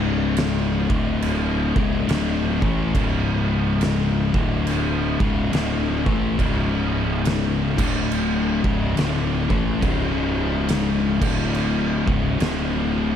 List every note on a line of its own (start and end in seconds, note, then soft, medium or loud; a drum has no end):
0.00 0.86 C#1 medium
0.00 0.88 C#2 medium
0.00 0.88 G#2 loud
0.00 0.89 C#3 loud
0.37 snare loud
0.37 crash medium
0.89 1.72 D1 loud
0.89 1.74 D2 medium
0.89 1.74 A2 medium
0.89 1.74 D3 loud
0.89 kick loud
1.22 crash medium
1.75 2.06 C#1 medium
1.75 2.07 C#2 medium
1.75 2.07 G#2 medium
1.75 2.08 C#3 loud
1.75 kick loud
2.08 2.58 D1 loud
2.08 2.60 D2 medium
2.08 2.60 A2 loud
2.08 2.61 D3 loud
2.08 snare loud
2.08 crash medium
2.62 2.92 A1 loud
2.62 2.94 A2 medium
2.62 2.94 E3 loud
2.62 2.94 A3 loud
2.62 kick loud
2.94 4.30 C#1 loud
2.94 4.32 C#2 medium
2.94 4.32 G#2 loud
2.94 4.33 C#3 loud
2.94 kick loud
2.94 crash medium
3.81 snare loud
3.81 crash medium
4.34 5.16 D1 medium
4.34 5.18 D2 loud
4.34 5.18 A2 loud
4.34 5.18 D3 loud
4.34 kick loud
4.67 crash medium
5.20 5.50 C#1 medium
5.20 5.51 C#2 medium
5.20 5.51 G#2 loud
5.20 5.52 C#3 medium
5.20 kick loud
5.52 6.02 D1 loud
5.52 6.04 D2 medium
5.52 6.05 A2 loud
5.52 6.05 D3 loud
5.52 snare loud
5.52 crash medium
6.06 6.36 A1 loud
6.06 6.37 A2 medium
6.06 6.37 E3 medium
6.06 6.38 A3 loud
6.06 kick loud
6.39 7.74 C#1 loud
6.39 7.76 C#2 medium
6.39 7.76 G#2 loud
6.39 7.76 C#3 loud
6.39 kick loud
6.39 crash medium
7.25 snare loud
7.25 crash medium
7.78 8.60 D1 loud
7.78 8.62 D2 loud
7.78 8.62 A2 loud
7.78 8.62 D3 loud
7.78 kick loud
7.78 crash loud
8.11 crash medium
8.64 8.94 C#1 loud
8.64 8.95 C#2 medium
8.64 8.95 G#2 medium
8.64 8.96 C#3 loud
8.64 kick loud
8.96 9.46 D1 loud
8.96 9.48 D2 loud
8.96 9.48 A2 loud
8.96 9.48 D3 loud
8.96 snare loud
8.96 crash medium
9.50 9.80 A1 medium
9.50 9.81 A2 loud
9.50 9.81 E3 loud
9.50 9.81 A3 loud
9.50 kick loud
9.81 11.17 C#1 medium
9.81 11.19 C#2 loud
9.81 11.20 G#2 loud
9.81 11.20 C#3 loud
9.81 kick loud
9.81 crash medium
10.69 snare loud
10.69 crash medium
11.20 12.03 D1 loud
11.20 12.05 D2 medium
11.20 12.05 A2 loud
11.20 12.06 D3 loud
11.20 kick loud
11.20 crash loud
11.55 crash medium
12.07 12.37 C#1 medium
12.07 12.38 C#2 medium
12.07 12.39 G#2 loud
12.07 12.39 C#3 medium
12.07 kick loud
12.39 13.16 D1 loud
12.39 13.16 D2 loud
12.39 13.16 A2 loud
12.39 13.16 D3 loud
12.39 snare loud
12.39 crash medium